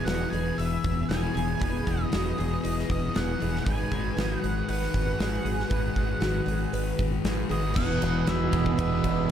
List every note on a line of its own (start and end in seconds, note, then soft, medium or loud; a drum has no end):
0.00 0.14 E2 medium
0.00 0.12 E3 medium
0.00 3.62 E3 medium
0.00 3.62 B3 medium
0.00 0.11 D#4 medium
0.00 0.11 G#4 medium
0.00 3.62 G#4 medium
0.00 0.58 B4 loud
0.05 0.24 E1 medium
0.05 0.37 E3 medium
0.05 0.32 F#4 medium
0.05 0.30 F#5 medium
0.05 snare loud
0.05 open hi-hat medium
0.09 1.10 E2 medium
0.09 0.35 B2 medium
0.09 0.33 E3 medium
0.09 0.37 B3 medium
0.09 0.36 D#4 medium
0.09 0.35 G#4 medium
0.30 0.51 E1 medium
0.30 1.12 E3 medium
0.30 1.09 G#4 medium
0.30 0.58 G#5 medium
0.30 open hi-hat medium
0.35 1.11 B2 medium
0.35 1.10 E3 medium
0.35 1.11 B3 medium
0.35 1.12 D#4 medium
0.35 1.13 G#4 medium
0.58 0.76 E1 medium
0.58 1.60 B4 medium
0.58 1.11 E5 medium
0.58 open hi-hat medium
0.84 1.02 E1 medium
0.84 kick medium
0.84 open hi-hat soft
1.09 1.27 E1 medium
1.09 1.58 E2 medium
1.09 1.38 B2 medium
1.09 1.37 E3 medium
1.09 1.37 B3 medium
1.09 1.34 G#4 medium
1.09 1.61 G#5 medium
1.09 snare medium
1.09 open hi-hat medium
1.13 1.35 E3 medium
1.13 1.36 D#4 medium
1.13 1.34 G#4 medium
1.34 1.54 E1 medium
1.34 1.61 E3 medium
1.34 1.60 E3 medium
1.34 1.61 B3 medium
1.34 1.62 D#4 medium
1.34 2.11 G#4 medium
1.34 1.62 G#4 medium
1.34 open hi-hat medium
1.39 1.60 B2 medium
1.60 1.79 E1 medium
1.60 2.10 E2 loud
1.60 2.12 E2 medium
1.60 1.87 B2 loud
1.60 2.12 B2 medium
1.60 1.87 E3 medium
1.60 1.84 E3 loud
1.60 1.87 B3 medium
1.60 1.87 D#4 medium
1.60 1.86 G#4 medium
1.60 2.64 B4 medium
1.60 1.88 G#5 loud
1.60 kick loud
1.60 open hi-hat medium
1.85 2.05 E1 medium
1.85 2.11 B2 medium
1.85 2.11 E3 medium
1.85 2.12 E3 medium
1.85 2.13 B3 medium
1.85 2.14 D#4 medium
1.85 2.14 G#4 medium
1.85 2.90 D#5 medium
1.85 kick medium
1.85 open hi-hat medium
2.11 2.31 E1 medium
2.11 2.63 E2 medium
2.11 2.38 B2 medium
2.11 2.35 E3 medium
2.11 2.39 E3 medium
2.11 2.39 B3 medium
2.11 2.38 D#4 medium
2.11 2.38 F#4 medium
2.11 snare loud
2.11 open hi-hat medium
2.15 2.38 G#4 medium
2.36 2.57 E1 medium
2.36 3.14 B2 medium
2.36 3.15 E3 medium
2.36 3.16 B3 medium
2.36 3.17 D#4 medium
2.36 3.15 G#4 medium
2.36 3.18 G#4 medium
2.36 open hi-hat medium
2.41 3.14 E3 medium
2.64 2.82 E1 medium
2.64 3.14 B4 medium
2.64 open hi-hat medium
2.79 snare soft
2.89 3.07 E1 medium
2.89 3.17 D#5 medium
2.89 kick medium
2.89 open hi-hat medium
3.14 3.34 E1 medium
3.14 3.64 E2 medium
3.14 3.39 B2 medium
3.14 3.42 E3 medium
3.14 3.37 E3 medium
3.14 3.43 B3 medium
3.14 3.42 D#4 medium
3.14 3.40 G#4 medium
3.14 3.41 G#4 medium
3.14 3.65 F#5 medium
3.14 snare medium
3.14 open hi-hat medium
3.38 3.64 B2 medium
3.38 3.63 E3 medium
3.38 4.16 G#4 medium
3.38 3.69 G#4 medium
3.42 3.60 E1 medium
3.42 3.66 E3 medium
3.42 3.68 B3 medium
3.42 3.69 D#4 medium
3.42 open hi-hat medium
3.55 snare soft
3.64 3.84 G#1 medium
3.64 4.17 G#2 medium
3.64 4.21 G#2 medium
3.64 3.92 D#3 medium
3.64 4.18 D#3 medium
3.64 3.94 F#3 medium
3.64 3.91 G#3 medium
3.64 7.73 G#3 medium
3.64 3.93 B3 loud
3.64 7.73 F#4 medium
3.64 4.68 B4 medium
3.64 7.73 B4 medium
3.64 4.39 G#5 loud
3.64 kick loud
3.64 open hi-hat medium
3.69 3.93 D#4 loud
3.69 3.92 G#4 medium
3.91 4.10 G#1 medium
3.91 4.17 D#3 soft
3.91 4.17 F#3 soft
3.91 4.20 G#3 medium
3.91 4.19 B3 medium
3.91 4.19 D#4 medium
3.91 4.20 G#4 medium
3.91 kick medium
3.91 open hi-hat soft
4.17 4.35 G#1 medium
4.17 5.19 G#2 medium
4.17 4.44 D#3 medium
4.17 4.44 F#3 medium
4.17 4.42 G#3 medium
4.17 4.43 B3 medium
4.17 4.43 D#4 medium
4.17 4.44 F#4 medium
4.17 4.42 G#4 medium
4.17 snare loud
4.17 open hi-hat medium
4.39 5.20 G#3 medium
4.39 5.21 D#4 medium
4.39 5.21 G#4 medium
4.39 4.69 F#5 loud
4.43 4.62 G#1 medium
4.43 5.19 D#3 medium
4.43 5.18 F#3 medium
4.43 5.20 B3 medium
4.43 5.21 G#4 medium
4.43 open hi-hat medium
4.69 4.87 G#1 medium
4.69 5.70 B4 medium
4.69 7.22 F#5 medium
4.69 open hi-hat medium
4.82 snare soft
4.94 5.12 G#1 medium
4.94 kick medium
4.94 open hi-hat medium
5.19 5.38 G#1 medium
5.19 5.68 G#2 medium
5.19 5.46 D#3 medium
5.19 5.46 F#3 medium
5.19 5.44 G#3 medium
5.19 5.46 B3 medium
5.19 5.46 D#4 medium
5.19 5.45 G#4 medium
5.19 snare medium
5.19 open hi-hat medium
5.45 5.63 G#1 medium
5.45 5.69 D#3 soft
5.45 5.72 F#3 medium
5.45 5.70 G#3 medium
5.45 5.72 B3 medium
5.45 5.72 D#4 medium
5.45 5.73 G#4 medium
5.45 5.69 G#4 medium
5.45 open hi-hat medium
5.60 snare soft
5.69 5.89 G#1 medium
5.69 6.21 G#2 medium
5.69 6.22 G#2 medium
5.69 5.97 D#3 medium
5.69 6.23 D#3 medium
5.69 5.95 G#3 loud
5.69 6.20 B4 medium
5.69 kick loud
5.69 open hi-hat medium
5.73 5.99 F#3 medium
5.73 5.98 B3 medium
5.73 5.97 D#4 medium
5.73 5.96 G#4 medium
5.96 6.14 G#1 medium
5.96 6.22 D#3 medium
5.96 6.23 G#3 medium
5.96 6.24 B3 medium
5.96 6.25 D#4 medium
5.96 6.25 G#4 medium
5.96 kick medium
5.96 open hi-hat medium
6.00 6.23 F#3 medium
6.20 6.40 G#1 medium
6.20 6.73 G#2 medium
6.20 6.48 D#3 medium
6.20 6.50 F#3 medium
6.20 6.46 G#3 medium
6.20 6.45 F#4 medium
6.20 snare loud
6.20 open hi-hat medium
6.25 6.49 B3 medium
6.25 6.49 D#4 medium
6.25 6.47 G#4 medium
6.46 6.65 G#1 medium
6.46 7.25 D#3 medium
6.46 7.26 G#3 medium
6.46 6.72 G#4 medium
6.46 7.26 G#4 medium
6.46 open hi-hat medium
6.50 7.24 F#3 medium
6.50 7.25 B3 medium
6.50 7.26 D#4 medium
6.73 6.91 G#1 medium
6.73 7.24 B4 medium
6.73 open hi-hat medium
6.99 7.17 G#1 medium
6.99 kick medium
6.99 open hi-hat medium
7.24 7.42 G#1 medium
7.24 7.74 G#2 medium
7.24 7.50 D#3 medium
7.24 7.52 F#3 medium
7.24 7.48 G#3 medium
7.24 7.52 B3 medium
7.24 7.51 D#4 medium
7.24 7.48 G#4 medium
7.24 7.50 G#4 medium
7.24 snare medium
7.24 open hi-hat medium
7.49 7.77 G#1 medium
7.49 7.75 D#3 soft
7.49 7.76 F#3 medium
7.49 7.74 G#3 medium
7.49 7.76 B3 medium
7.49 7.75 D#4 medium
7.49 7.74 G#4 medium
7.49 7.75 G#4 medium
7.49 7.76 D#5 medium
7.49 open hi-hat medium
7.74 7.99 E1 loud
7.74 8.25 E2 medium
7.74 9.31 E2 medium
7.74 8.26 B2 loud
7.74 9.31 B2 medium
7.74 8.28 E3 loud
7.74 9.31 E3 medium
7.74 9.31 B3 medium
7.74 8.77 B4 medium
7.74 8.28 F#5 medium
7.74 kick loud
7.74 crash loud
7.78 9.31 E3 medium
7.78 9.31 B3 medium
7.78 9.31 D#4 medium
7.78 9.31 G#4 medium
8.02 8.24 E1 medium
8.02 snare soft
8.02 ride medium
8.26 8.50 E1 medium
8.26 8.77 E2 medium
8.26 8.78 B2 medium
8.26 8.79 E3 medium
8.26 8.52 F#4 medium
8.26 8.79 E5 medium
8.26 snare loud
8.26 ride loud
8.52 8.75 E1 medium
8.52 9.29 E2 medium
8.52 9.29 B2 medium
8.52 9.28 E3 medium
8.52 9.31 G#4 medium
8.52 kick medium
8.52 ride medium
8.66 kick medium
8.77 9.01 E1 medium
8.77 9.27 E2 loud
8.77 9.05 B2 medium
8.77 9.02 E3 loud
8.77 9.31 B4 medium
8.77 9.29 E5 medium
8.77 kick loud
8.77 ride loud
9.03 9.26 E1 medium
9.03 9.29 B2 medium
9.03 9.30 E3 medium
9.03 kick medium
9.03 ride medium